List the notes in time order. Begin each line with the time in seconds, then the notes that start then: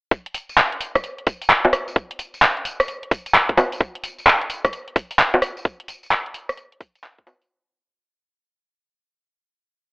0.11 kick, closed hi-hat, tambourine
0.26 closed hi-hat
0.34 open hi-hat, tambourine
0.49 tambourine
0.57 clap, tambourine
0.72 closed hi-hat
0.81 open hi-hat, tambourine
0.95 kick, cross-stick, closed hi-hat, tambourine
1.04 closed hi-hat, tambourine
1.18 closed hi-hat
1.27 kick, open hi-hat, tambourine
1.42 open hi-hat, tambourine
1.50 clap, tambourine
1.65 closed hi-hat, high bongo
1.73 cross-stick, open hi-hat, tambourine
1.88 tambourine
1.96 kick, closed hi-hat, tambourine
2.11 closed hi-hat
2.19 open hi-hat, tambourine
2.34 tambourine
2.42 clap
2.57 closed hi-hat
2.65 open hi-hat, tambourine
2.80 cross-stick, closed hi-hat, tambourine
2.88 closed hi-hat, tambourine
3.03 closed hi-hat
3.11 kick, open hi-hat, tambourine
3.26 closed hi-hat, tambourine
3.34 clap, tambourine
3.49 kick, closed hi-hat
3.57 cross-stick, open hi-hat, tambourine, high bongo
3.72 open hi-hat, tambourine
3.81 kick, closed hi-hat, tambourine
3.95 closed hi-hat
4.04 open hi-hat, tambourine
4.18 tambourine
4.27 clap, tambourine
4.42 closed hi-hat
4.50 open hi-hat, tambourine
4.65 kick, cross-stick, closed hi-hat, tambourine
4.73 closed hi-hat, tambourine
4.88 closed hi-hat
4.96 kick, open hi-hat, tambourine
5.11 open hi-hat, tambourine
5.19 clap, tambourine
5.34 closed hi-hat, high bongo
5.42 cross-stick, open hi-hat, tambourine
5.57 tambourine
5.65 kick, closed hi-hat, tambourine
5.80 closed hi-hat
5.88 open hi-hat, tambourine
6.03 tambourine
6.11 clap, tambourine
6.26 closed hi-hat
6.34 open hi-hat, tambourine
6.49 cross-stick, closed hi-hat, tambourine
6.57 closed hi-hat, tambourine
6.72 closed hi-hat
6.81 kick, open hi-hat, tambourine
6.95 closed hi-hat, tambourine
7.04 clap, tambourine
7.18 kick, closed hi-hat
7.27 cross-stick, open hi-hat, tambourine, high bongo
7.42 open hi-hat, tambourine